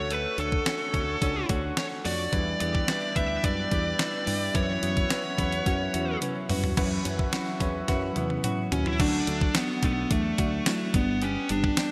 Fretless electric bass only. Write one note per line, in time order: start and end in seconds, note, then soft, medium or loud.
0.00 0.25 D2 loud
0.38 0.59 D2 loud
0.94 1.15 D2 medium
1.22 1.43 C#2 medium
1.49 1.70 D2 medium
2.05 2.26 F2 medium
2.33 2.54 E2 loud
2.61 2.82 E2 loud
3.16 3.37 D2 medium
3.44 3.65 F#2 medium
3.72 3.93 E2 medium
4.27 4.48 G2 medium
4.55 4.76 F#2 loud
4.82 5.03 F#2 medium
5.38 5.59 E2 medium
5.66 5.87 F#2 loud
5.94 6.15 E2 medium
6.50 6.71 G2 medium
6.78 6.98 F#2 loud
7.05 7.26 F#2 medium
7.60 7.81 E2 medium
7.88 8.09 F#2 loud
8.16 8.37 E2 medium
8.72 8.93 D#2 medium
9.00 9.21 D2 loud
9.27 9.48 D2 loud
9.83 10.04 B1 medium
10.11 10.32 E2 loud
10.39 10.60 D2 loud
10.94 11.36 G1 medium
11.50 11.71 G1 loud